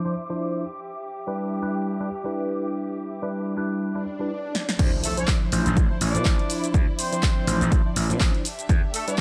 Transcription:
0.00 0.61 C5 medium
0.00 4.27 E5 medium
0.00 4.26 D6 medium
0.05 0.13 F3 medium
0.05 0.13 D4 medium
0.05 0.13 E4 medium
0.05 0.13 C5 medium
0.29 0.63 F3 medium
0.29 0.63 D4 medium
0.29 0.63 E4 medium
0.29 0.64 C5 medium
0.65 4.27 G4 medium
1.27 1.59 G3 medium
1.27 1.59 D4 medium
1.27 1.60 E4 medium
1.27 1.60 B4 medium
1.62 1.97 G3 medium
1.62 1.97 D4 medium
1.62 1.97 E4 medium
1.62 1.97 B4 medium
2.00 2.08 G3 medium
2.00 2.08 D4 medium
2.00 2.08 E4 medium
2.00 2.09 B4 medium
2.24 3.18 G3 medium
2.24 3.19 D4 medium
2.24 3.19 E4 medium
2.24 3.19 B4 medium
3.22 3.54 G3 medium
3.22 3.55 D4 medium
3.22 3.55 E4 medium
3.22 3.55 B4 medium
3.57 3.92 G3 medium
3.57 3.92 D4 medium
3.57 3.92 E4 medium
3.57 3.92 B4 medium
3.82 swell medium
3.95 4.03 G3 medium
3.95 4.03 D4 medium
3.95 4.04 E4 medium
3.95 4.04 B4 medium
4.19 4.30 G3 medium
4.19 4.30 D4 medium
4.19 4.31 E4 medium
4.19 4.31 B4 medium
4.55 snare medium
4.69 snare medium
4.79 4.90 D2 loud
4.79 5.12 F3 loud
4.79 5.12 D4 medium
4.79 5.12 E4 medium
4.79 8.41 E4 medium
4.79 6.72 C5 medium
4.79 5.12 C5 loud
4.79 kick loud
4.79 closed hi-hat medium
4.79 crash loud
4.79 impact medium
4.79 shaker soft
5.04 5.15 A3 medium
5.04 5.15 A4 medium
5.04 open hi-hat loud
5.04 shaker medium
5.17 5.50 F3 medium
5.17 5.50 D4 medium
5.17 5.36 D4 medium
5.17 5.50 E4 medium
5.17 5.50 C5 medium
5.17 5.36 D5 medium
5.17 closed hi-hat medium
5.17 shaker soft
5.28 kick loud
5.28 clap loud
5.28 closed hi-hat medium
5.28 shaker soft
5.52 5.63 A1 medium
5.52 5.87 F3 medium
5.52 5.87 D4 medium
5.52 5.87 E4 medium
5.52 5.87 C5 loud
5.52 open hi-hat loud
5.52 shaker medium
5.66 5.74 A1 medium
5.66 closed hi-hat medium
5.66 shaker soft
5.77 kick loud
5.77 closed hi-hat medium
5.77 shaker soft
5.90 5.98 F3 medium
5.90 5.99 D4 medium
5.90 5.99 E4 medium
5.90 5.99 C5 medium
6.01 6.16 A1 loud
6.01 6.70 D4 medium
6.01 6.70 D5 medium
6.01 open hi-hat loud
6.01 shaker medium
6.14 6.23 B2 loud
6.14 7.09 F3 medium
6.14 7.09 D4 medium
6.14 7.09 E4 medium
6.14 7.10 C5 loud
6.14 closed hi-hat medium
6.14 shaker soft
6.25 6.36 A1 medium
6.25 kick loud
6.25 clap loud
6.25 closed hi-hat medium
6.25 shaker soft
6.39 closed hi-hat soft
6.50 open hi-hat loud
6.50 shaker medium
6.64 closed hi-hat medium
6.64 shaker soft
6.74 6.85 D2 medium
6.74 8.43 D5 medium
6.74 kick loud
6.74 closed hi-hat medium
6.74 shaker soft
6.99 7.68 C4 medium
6.99 7.68 C5 loud
6.99 open hi-hat loud
6.99 shaker medium
7.12 7.45 F3 medium
7.12 7.45 D4 medium
7.12 7.45 E4 medium
7.12 7.45 C5 medium
7.12 closed hi-hat medium
7.12 shaker soft
7.23 kick loud
7.23 clap loud
7.23 closed hi-hat medium
7.23 shaker soft
7.47 7.58 A1 loud
7.47 7.82 F3 medium
7.47 7.82 D4 medium
7.47 7.82 E4 medium
7.47 7.83 C5 medium
7.47 open hi-hat loud
7.47 shaker medium
7.61 7.69 A1 medium
7.61 closed hi-hat medium
7.61 shaker soft
7.72 7.83 A1 medium
7.72 kick loud
7.72 closed hi-hat medium
7.72 shaker soft
7.85 7.94 F3 medium
7.85 7.94 D4 medium
7.85 7.94 E4 medium
7.85 7.94 C5 medium
7.85 muted slap bass stroke soft
7.96 8.11 A1 loud
7.96 open hi-hat loud
7.96 shaker medium
8.09 8.18 B2 loud
8.09 8.43 F3 medium
8.09 8.44 D4 medium
8.09 8.44 E4 medium
8.09 8.44 C5 medium
8.09 closed hi-hat medium
8.09 shaker soft
8.20 8.31 A1 medium
8.20 kick loud
8.20 clap loud
8.20 closed hi-hat medium
8.20 shaker soft
8.35 closed hi-hat soft
8.45 9.21 D4 medium
8.45 9.21 G4 medium
8.45 9.21 E5 medium
8.45 open hi-hat loud
8.45 shaker medium
8.59 closed hi-hat medium
8.59 shaker soft
8.69 8.80 E2 loud
8.69 kick loud
8.69 closed hi-hat medium
8.69 shaker soft
8.94 9.05 A3 medium
8.94 9.05 A4 medium
8.94 open hi-hat loud
8.94 shaker medium
9.07 9.21 G3 medium
9.07 9.21 D4 medium
9.07 9.21 E4 medium
9.07 9.21 B4 medium
9.07 9.21 D5 medium
9.07 closed hi-hat medium
9.07 shaker soft

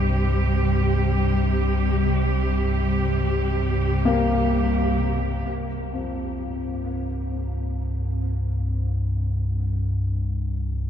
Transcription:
0.00 5.45 C2 medium
0.00 5.45 G2 medium
0.00 5.47 C3 medium
0.00 5.46 G3 medium
0.00 5.47 G4 medium
4.05 9.62 A#3 medium
5.47 10.90 C2 medium
5.47 10.90 G2 medium
5.93 10.90 F2 soft

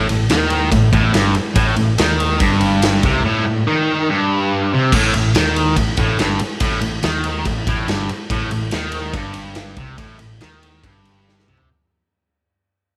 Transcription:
0.09 0.29 A1 medium
0.09 0.26 A2 medium
0.09 ride medium
0.29 0.69 D#2 medium
0.29 0.71 D#3 loud
0.29 snare loud
0.29 ride medium
0.50 ride medium
0.72 0.91 A1 medium
0.72 0.88 A2 medium
0.72 kick medium
0.72 ride medium
0.93 1.12 A1 medium
0.93 1.13 A2 loud
0.93 kick loud
0.93 ride medium
1.13 1.34 G1 medium
1.13 1.34 G2 loud
1.13 snare loud
1.13 ride medium
1.35 muted distorted electric guitar stroke medium
1.35 muted picked electric bass stroke soft
1.35 ride medium
1.55 1.75 A1 medium
1.55 1.76 A2 loud
1.55 kick loud
1.55 ride loud
1.76 1.97 A1 medium
1.76 1.94 A2 medium
1.76 ride medium
1.98 2.38 D#2 medium
1.98 2.39 D#3 loud
1.98 snare loud
1.98 ride loud
2.20 ride medium
2.40 2.99 G1 medium
2.40 3.02 G2 loud
2.40 kick loud
2.40 ride medium
2.61 ride medium
2.82 snare loud
2.82 ride loud
3.03 3.23 C2 loud
3.03 3.24 C3 loud
3.03 kick medium
3.03 ride medium
3.25 3.45 A2 loud
3.46 3.63 A2 medium
3.67 4.08 D#3 loud
4.09 4.71 G2 medium
4.73 4.92 C3 medium
4.92 5.12 A1 loud
4.92 5.14 A2 loud
4.92 kick loud
4.92 crash loud
5.14 5.34 A1 medium
5.14 5.31 A2 medium
5.14 ride medium
5.35 5.74 D#2 medium
5.35 5.77 D#3 loud
5.35 snare loud
5.35 ride loud
5.56 ride medium
5.76 5.96 A1 medium
5.76 5.94 A2 medium
5.76 kick medium
5.76 ride loud
5.97 6.17 A1 medium
5.97 6.19 A2 loud
5.97 kick loud
5.97 ride medium
6.18 6.39 G1 medium
6.18 6.39 G2 loud
6.18 snare loud
6.18 ride loud
6.39 muted distorted electric guitar stroke medium
6.39 muted picked electric bass stroke soft
6.39 ride medium
6.60 6.81 A1 medium
6.60 6.80 A2 loud
6.60 kick loud
6.60 ride loud
6.81 7.02 A1 medium
6.81 6.99 A2 medium
6.81 ride medium
7.03 7.43 D#2 medium
7.03 7.45 D#3 loud
7.03 snare loud
7.03 ride loud
7.24 ride medium
7.45 7.65 A1 medium
7.45 7.63 A2 medium
7.45 kick medium
7.45 ride loud
7.67 7.87 A1 loud
7.67 7.88 A2 loud
7.67 kick loud
7.67 ride medium
7.88 8.08 G1 loud
7.88 8.08 G2 loud
7.88 snare loud
7.88 ride medium
8.09 muted distorted electric guitar stroke medium
8.09 muted picked electric bass stroke soft
8.09 ride medium
8.30 8.50 A1 medium
8.30 8.51 A2 loud
8.30 kick loud
8.30 ride loud
8.51 8.71 A1 medium
8.51 8.69 A2 medium
8.51 ride medium
8.71 9.12 D#2 medium
8.71 9.14 D#3 loud
8.71 snare loud
8.71 ride loud
8.92 ride medium
9.13 9.73 G1 medium
9.13 9.78 G2 loud
9.13 kick loud
9.13 ride loud
9.34 ride medium
9.55 snare loud
9.55 ride loud
9.76 9.97 C2 loud
9.76 9.98 C3 loud
9.76 kick loud
9.76 ride medium
9.98 10.18 A1 medium
9.98 10.18 A2 loud
9.98 kick loud
9.98 ride loud
10.19 10.41 A1 medium
10.19 10.37 A2 medium
10.19 ride medium
10.41 10.82 D#2 medium
10.41 10.83 D#3 loud
10.41 snare loud
10.41 ride loud
10.63 ride medium
10.83 11.44 G1 medium
10.83 11.47 G2 loud
10.83 kick loud
10.83 ride loud
11.05 ride medium
11.29 snare medium
11.39 snare medium
11.47 11.67 C2 medium
11.47 11.68 C3 loud
11.47 mid tom medium
11.57 floor tom medium

